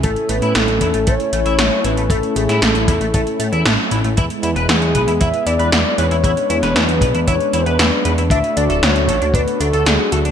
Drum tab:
HH |xxxxxxxxxxxxx-xx|xxxxxxxxxxxxx-xx|xxxxxxxxxxxxx-xx|xxxxxxxxxxxxx-xx|
SD |----o-------o---|---oo-------o---|----o-------o---|---oo-------o---|
BD |o-----o-o-------|o-----o-o-------|o-----o-o-------|o-----o-o-------|

HH |xxxxxxxxxxxxx-xx|
SD |----o-------o---|
BD |o-----o-o-------|